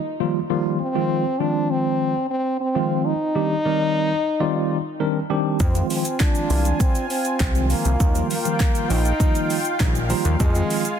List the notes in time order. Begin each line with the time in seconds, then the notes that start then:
Already playing: D#4, downlifter
0.20 D#3 F3 G3 A#3 F4
0.50 D#3 F3 G3 A#3 F4
0.80 C4
0.95 D#3 F3 G#3 C4 F4
1.40 D#3 F3 G#3 C4 D4 F4
1.70 C4
2.30 C4
2.60 C4
2.75 D#3 F3 G#3 C4 F4
3.05 D#4
3.35 D#3 G3 C4 D4 G4
3.65 D#3 G3 C4 A#4 D5
4.40 D#3 G3 C4 F4 D5
5.00 D#3 G3 C4 D4 A#4
5.30 D#3 G3 C4 D4 G4
5.60 F2 C4 F4 F5 G#5, kick, closed hi-hat, shaker
5.75 D#3 F3 G#3 C4 F4, closed hi-hat, shaker
5.90 C4, open hi-hat, shaker
6.05 closed hi-hat, shaker
6.20 D#3 F3 G#3 C4 D4 F4, kick, clap, closed hi-hat, shaker
6.35 closed hi-hat, shaker
6.50 C2, open hi-hat, shaker
6.65 closed hi-hat, shaker
6.80 C4, kick, closed hi-hat, shaker
6.95 closed hi-hat, shaker
7.10 C4, open hi-hat, shaker
7.25 closed hi-hat, shaker
7.40 C2, kick, clap, closed hi-hat, shaker
7.55 D#3 F3 G#3 C4 F4, closed hi-hat, shaker
7.70 A#3, open hi-hat, shaker
7.85 C2, closed hi-hat, shaker
8.00 D#2 F4 G5, kick, closed hi-hat, shaker
8.15 D#3 F3 G3 A#3 F4, closed hi-hat, shaker
8.30 A#3, open hi-hat, shaker
8.45 D#3 F3 G3 A#3 F4, closed hi-hat, shaker
8.60 kick, clap, closed hi-hat, shaker
8.75 closed hi-hat, shaker
8.90 A#1 D#4, open hi-hat, shaker
9.05 closed hi-hat, shaker
9.20 D#3 F3 G3 A#3 F4, kick, closed hi-hat, shaker
9.35 closed hi-hat, shaker
9.50 open hi-hat, shaker
9.65 closed hi-hat, shaker
9.80 A#1 D#3 F3 G3 A#3 D#4 D#5, kick, clap, closed hi-hat, shaker
9.95 closed hi-hat, shaker
10.10 D#3 F3 G3 A#3 F4 A#5, open hi-hat, shaker
10.25 D#2, closed hi-hat, shaker
10.40 F2 G#3 F4 G#5, kick, closed hi-hat, shaker
10.55 D#3 F3 G#3 C4 F4, closed hi-hat, shaker
10.70 open hi-hat, shaker
10.85 closed hi-hat, shaker